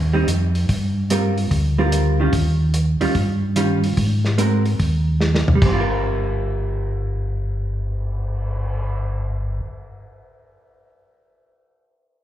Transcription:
Already playing: tonewheel organ D#2
0.13 hollow-body jazz guitar G3 C4 D#4
0.27 tonewheel organ F2, closed hi-hat
0.55 open hi-hat
0.69 tonewheel organ G2, kick, open hi-hat
1.10 hollow-body jazz guitar G3 C4 F4 A#4, closed hi-hat
1.38 open hi-hat
1.51 tonewheel organ D2, kick, open hi-hat
1.78 hollow-body jazz guitar G3 C4 F4 A#4
1.92 closed hi-hat
2.20 hollow-body jazz guitar D#3 G3 C#4 F4
2.33 tonewheel organ D#2, kick, open hi-hat
2.74 closed hi-hat
3.00 tonewheel organ D#2, hollow-body jazz guitar D#3 G3 C#4 F4, open hi-hat
3.15 tonewheel organ G2, kick, open hi-hat
3.56 hollow-body jazz guitar D#3 G3 C#4 F4, closed hi-hat
3.84 open hi-hat
3.97 tonewheel organ G#2, kick, open hi-hat
4.25 snare
4.38 hollow-body jazz guitar G#3 C4 F#4 A#4, closed hi-hat
4.66 open hi-hat
4.80 tonewheel organ D#2, kick, open hi-hat
5.21 snare
5.35 snare
5.48 tonewheel organ D#2, floor tom
5.55 hollow-body jazz guitar G3
5.62 tonewheel organ G1, hollow-body jazz guitar C4, kick, crash
5.73 hollow-body jazz guitar F4
5.80 hollow-body jazz guitar A#4
5.89 cymbal swell

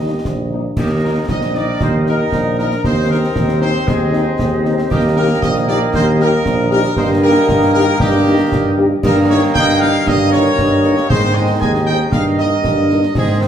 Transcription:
Already playing: tuba D#2, trombone section G3 D#4, euphonium G4, woodwind section G4 D#5, trumpet section D#5
0.00 french horn section G3 A#3 D#4
0.25 tuba A#1, concert bass drum, snare
0.51 french horn section G3 A#3 D#4
0.76 tuba D#2, trombone section D#3 D#4, trumpet section G4, woodwind section A#4 D#5, concert bass drum, snare, crash
1.03 french horn section A#3 D#4, trumpet section A#4
1.28 tuba A#1, woodwind section A#4 D#5, trumpet section D#5, concert bass drum, snare
1.41 snare
1.54 french horn section A#3 D#4, trumpet section D5, snare
1.80 tuba D#2, trumpet section C5, concert bass drum, snare
2.06 french horn section A#3 D#4, trumpet section A#4, snare
2.32 tuba A#1, concert bass drum, snare
2.58 french horn section A#3 D#4, trumpet section A#4, snare
2.71 snare
2.84 tuba D#2, trombone section D#3 C4, woodwind section C5 D#5, trumpet section C5, concert bass drum, snare
3.09 french horn section G#3 C4 D#4, trumpet section A#4
3.36 tuba D#2, concert bass drum, snare
3.49 snare
3.61 french horn section G#3 C4 D#4, trumpet section C5, snare
3.87 tuba D#2, trumpet section G#4, woodwind section C5 D#5, concert bass drum, snare
4.13 french horn section G#3 C4 D#4, snare
4.39 tuba D#2, concert bass drum, snare
4.64 french horn section G#3 C4 D#4, snare
4.78 snare
4.90 tuba D#2, trombone section D#3 A#3, trumpet section G4, woodwind section A#4 D#5, concert bass drum, snare, crash
5.16 french horn section A#3 D#4 G4, trumpet section A#4
5.42 tuba A#1, woodwind section A#4 D#5, trumpet section D#5, concert bass drum, snare
5.55 snare
5.67 french horn section A#3 D#4 G4, trumpet section D5, snare
5.94 tuba D#2, trumpet section C5, concert bass drum, snare
6.19 french horn section A#3 D#4 G4, trumpet section A#4, snare
6.45 tuba A#1, concert bass drum, snare
6.71 french horn section A#3 D#4 G4, trumpet section A#4, snare
6.84 snare
6.96 tuba G2, trombone section D#3 A#3, woodwind section A#4 D#5, trumpet section C5, concert bass drum, snare
7.22 french horn section A#3 D#4 G4, trumpet section A#4
7.48 tuba G2, concert bass drum, snare
7.62 snare
7.74 french horn section A#3 D#4 G4, trumpet section A#4, snare
7.99 tuba G2, trumpet section G4, woodwind section A#4 D#5, concert bass drum, snare
8.26 french horn section A#3 D#4 G4
8.51 tuba G2, concert bass drum, snare
8.77 french horn section A#3 D#4 G4
9.03 tuba G2, trombone section D#3 A#3, woodwind section A#4 D#5, trumpet section A#4, concert bass drum, snare, crash
9.28 french horn section A#3 D#4 A#4, trumpet section C#5
9.54 tuba G2, woodwind section A#4 D#5, trumpet section G5, concert bass drum, snare
9.69 snare
9.80 french horn section A#3 D#4 A#4, trumpet section F5, snare
10.07 tuba G2, woodwind section A#4 D#5, trumpet section D#5, concert bass drum, snare
10.31 french horn section A#3 D#4 A#4, trumpet section C#5, snare
10.58 tuba G2, concert bass drum, snare
10.84 french horn section A#3 D#4 A#4, snare
10.97 snare
11.09 tuba G#2, trombone section D#3 G#3, woodwind section G#4 D#5, trumpet section C5, concert bass drum, snare
11.34 french horn section C4 D#4 G#4, trumpet section D#5
11.61 tuba D#2, woodwind section G#4 D#5, trumpet section G#5, concert bass drum, snare
11.75 snare
11.86 french horn section C4 D#4 G#4, trumpet section G5, snare
12.12 tuba G2, trombone section A#3, woodwind section A#4 D#5, trumpet section F5, concert bass drum, snare
12.38 french horn section A#3 D#4 A#4, trumpet section D#5, snare
12.64 tuba G2, concert bass drum, snare
12.90 french horn section A#3 D#4 A#4, snare
13.03 snare
13.15 tuba G#2, trombone section D#3 C4, trumpet section G#4, woodwind section C5 D#5, concert bass drum, snare, crash
13.41 french horn section C4 D#4 G#4, trumpet section C5

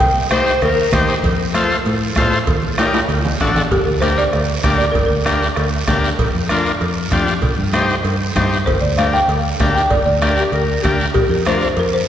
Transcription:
0.00 fingered electric bass C2, marimba G5, bombo low, cowbell, high conga
0.30 transistor combo organ D#4 G4 C5, clarinet C5, bombo rim, cowbell, high conga, short guiro
0.46 short guiro
0.62 fingered electric bass D#2, clarinet A#4, bombo rim, cowbell, high conga, long guiro
0.92 fingered electric bass D#2, transistor combo organ D#4 G4 C5, clarinet C5, bombo low, bombo rim, cowbell, high conga, low conga, short guiro
1.09 short guiro
1.23 fingered electric bass F2, bombo low, cowbell, high conga, long guiro
1.54 transistor combo organ F4 A4 C5, bombo rim, cowbell, high conga, short guiro
1.71 short guiro
1.85 fingered electric bass A2, cowbell, high conga, long guiro
2.16 fingered electric bass A2, transistor combo organ F4 A4 C5, bombo low, bombo rim, cowbell, high conga, low timbale, short guiro
2.32 short guiro
2.47 fingered electric bass D#2, bombo low, cowbell, high conga, long guiro
2.62 low conga
2.78 transistor combo organ D#4 G4 A#4, bombo rim, cowbell, high conga, high timbale, short guiro
2.94 high conga, high timbale, short guiro
3.09 fingered electric bass D2, cowbell, long guiro
3.25 low conga, low timbale
3.40 fingered electric bass A1, transistor combo organ D4 F#4 A4, bombo low, bombo rim, cowbell, short guiro
3.56 low conga, low timbale, short guiro
3.71 fingered electric bass G1, marimba G4, bombo low, cowbell, high conga, long guiro
3.85 fingered electric bass D2, marimba A#4
4.00 transistor combo organ D4 G4 A#4, marimba C5, bombo rim, cowbell, high conga, short guiro
4.18 marimba D5, short guiro
4.33 fingered electric bass D2, bombo rim, cowbell, high conga, long guiro
4.63 fingered electric bass D2, transistor combo organ D4 G4 A#4, bombo low, bombo rim, cowbell, high conga, low timbale, short guiro
4.78 marimba D5, short guiro
4.92 fingered electric bass G1, marimba A#4, bombo low, cowbell
4.96 high conga, long guiro
5.06 marimba A#4
5.10 fingered electric bass D2
5.25 transistor combo organ D4 G4 A#4, bombo rim, cowbell, high conga, short guiro
5.42 short guiro
5.56 fingered electric bass D2, bombo rim, cowbell, high conga, long guiro
5.87 fingered electric bass D2, transistor combo organ D4 G4 A#4, bombo low, bombo rim, cowbell, high conga, low conga, low timbale, short guiro
6.04 short guiro
6.19 fingered electric bass A#1, bombo low, cowbell, high conga, long guiro
6.35 fingered electric bass F2
6.49 transistor combo organ D4 F4 A#4, bombo rim, cowbell, high conga, short guiro
6.65 short guiro
6.81 fingered electric bass F2, cowbell, high conga, long guiro
7.11 fingered electric bass F2, transistor combo organ D4 F4 G4, bombo low, bombo rim, cowbell, high conga, short guiro
7.27 short guiro
7.42 fingered electric bass C2, bombo low, cowbell, high conga, long guiro
7.58 fingered electric bass G2, low conga
7.73 transistor combo organ D#4 G4 C5, bombo rim, cowbell, high conga, short guiro
7.89 short guiro
8.05 fingered electric bass G2, cowbell, high conga, long guiro
8.35 fingered electric bass G2, transistor combo organ D#4 G4 C5, bombo low, bombo rim, cowbell, high conga, low conga, short guiro
8.53 short guiro
8.66 fingered electric bass G1, marimba C5, bombo low, cowbell, high conga, long guiro
8.81 fingered electric bass D2, marimba D5
8.98 transistor combo organ D4 G4 A#4, marimba F5, bombo rim, cowbell, high conga, short guiro
9.13 marimba G5, short guiro
9.28 fingered electric bass D2, cowbell, high conga, long guiro
9.60 fingered electric bass D2, transistor combo organ D4 G4 A#4, bombo low, bombo rim, cowbell, high conga, low timbale, short guiro
9.75 marimba G5, short guiro
9.90 fingered electric bass G1, marimba D5, bombo low, cowbell, high conga, long guiro
10.06 fingered electric bass D2, marimba D5
10.21 transistor combo organ D4 G4 A#4, bombo rim, cowbell, high conga, short guiro
10.37 clarinet G4, short guiro
10.52 fingered electric bass D2, clarinet A#4, cowbell, high conga, long guiro
10.83 fingered electric bass D2, transistor combo organ D4 G4 A#4, clarinet G4, bombo low, bombo rim, cowbell, high conga, low conga, short guiro
11.00 short guiro
11.14 fingered electric bass A#1, marimba G4, bombo low, cowbell, high conga, long guiro
11.29 fingered electric bass F2, marimba A#4
11.45 transistor combo organ D4 F4 A#4, marimba C5, bombo rim, cowbell, high conga, short guiro
11.61 marimba C5, short guiro
11.77 fingered electric bass F2, marimba A#4, cowbell, high conga, long guiro
11.94 marimba C5

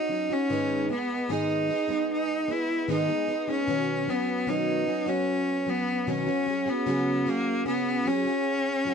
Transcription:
Already playing: cello D#4
0.09 steel-string acoustic guitar F#3 C#4 D#4 F#4
0.30 steel-string acoustic guitar C#4 D#4 F#4, cello C#4
0.49 steel-string acoustic guitar G#2 D#3 G#3 B3 D#4 G#4
0.89 steel-string acoustic guitar G#3 B3 D#4 G#4, cello B3
1.28 steel-string acoustic guitar G#2 D#3 G#3 B3 D#4 G#4, cello D#4
1.69 steel-string acoustic guitar G#3 B3 D#4 G#4
1.87 steel-string acoustic guitar G#3 B3 D#4 G#4
2.12 cello D#4
2.47 steel-string acoustic guitar G#3 B3 G#4
2.52 cello E4
2.87 steel-string acoustic guitar G#2 D#3 G#3 B3 D#4 G#4
2.92 cello D#4
3.07 steel-string acoustic guitar G#3 B3 D#4 G#4
3.27 steel-string acoustic guitar G#3 B3 D#4 G#4
3.47 steel-string acoustic guitar G#3 B3 D#4 G#4, cello C#4
3.67 steel-string acoustic guitar B2 D#3 F#3 B3 C#4 F#4
4.07 steel-string acoustic guitar F#3 B3 C#4 F#4, cello B3
4.46 steel-string acoustic guitar B2 D#3 F#3 B3 C#4 F#4, cello D#4
4.85 steel-string acoustic guitar F#3 B3 C#4 F#4
5.06 steel-string acoustic guitar F#3 B3 C#4 F#4, cello C#4
5.66 steel-string acoustic guitar F#3 B3 C#4 F#4, cello B3
6.07 steel-string acoustic guitar B2 D#3 F#3 B3 C#4 F#4, cello C#4
6.26 steel-string acoustic guitar F#3 B3 C#4 F#4
6.46 steel-string acoustic guitar F#3 C#4 F#4 G#4
6.66 cello B3, steel-string acoustic guitar C#4 F#4 G#4
6.86 steel-string acoustic guitar C#3 F#3 C#4 F#4 G#4
7.25 steel-string acoustic guitar F#3 C#4 F#4 G#4
7.29 cello A#3
7.65 steel-string acoustic guitar C#3 F#3 C#4 F#4 G#4, cello B3
8.05 steel-string acoustic guitar F#3 C#4 F#4 G#4, cello C#4
8.25 steel-string acoustic guitar C#4 F#4 G#4
8.85 steel-string acoustic guitar F#3 C#4 F#4 G#4

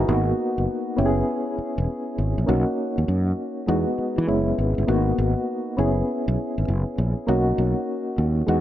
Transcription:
Already playing: synth keys F#4
0.07 fretless electric bass G#1, synth keys A#3 B3 D#4 F#4
0.58 fretless electric bass F#1
0.97 fretless electric bass F#1, synth keys B3 C#4 E4 G4
1.06 synth keys G#4
1.58 muted fretless electric bass stroke
1.78 fretless electric bass E1
2.18 fretless electric bass G#1
2.38 fretless electric bass A#1
2.46 fretless electric bass B1, synth keys A#3 C#4 D#4 F#4
2.98 fretless electric bass D#2
3.08 fretless electric bass F#2
3.67 fretless electric bass E2, synth keys G#3 B3 D#4 F#4
3.98 muted fretless electric bass stroke
4.18 fretless electric bass E3
4.27 fretless electric bass F#1, synth keys G#3 B3 C#4 E4
4.58 fretless electric bass G#1
4.78 fretless electric bass G1
4.87 fretless electric bass G#1, synth keys A#3 B3 D#4 F#4
5.18 fretless electric bass G#1
5.77 fretless electric bass F#1, synth keys B3 C#4 E4 G#4
6.28 fretless electric bass B1
6.58 fretless electric bass G#1
6.68 fretless electric bass F#1
6.98 fretless electric bass A#1
7.27 fretless electric bass B1, synth keys A#3 C#4 D#4 F#4
7.58 fretless electric bass B1
8.18 fretless electric bass D#2
8.46 fretless electric bass E2, synth keys G#3 B3 D#4 F#4

